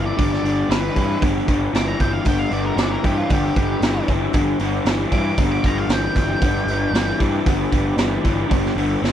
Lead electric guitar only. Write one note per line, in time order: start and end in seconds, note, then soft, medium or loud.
0.06 0.31 D5 medium
0.32 0.70 D5 medium
0.71 1.21 B4 loud
1.77 1.87 D6 loud
1.87 2.01 A#5 medium
2.01 2.13 G5 medium
2.13 2.27 F5 medium
2.27 2.39 G5 medium
2.39 2.52 F5 loud
2.53 2.65 D5 medium
2.64 2.77 A#4 loud
2.78 2.91 D5 loud
2.91 3.04 A#4 medium
3.06 3.18 G4 medium
3.18 3.30 F4 medium
3.32 3.56 G4 medium
3.57 4.07 G4 medium
5.13 5.38 D6 loud
5.52 5.64 D6 medium
5.66 5.78 A#5 loud
5.78 5.91 F5 medium
5.93 6.15 G5 medium
6.17 7.18 G5 loud